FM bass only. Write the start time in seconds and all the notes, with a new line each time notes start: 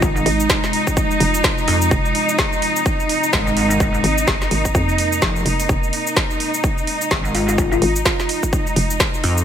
0.26 G#1
1.20 F1
1.91 F1
4.04 G#1
4.28 G1
4.51 G#1
4.75 F2
5.46 F1
5.69 F1
7.82 G#1
8.76 F1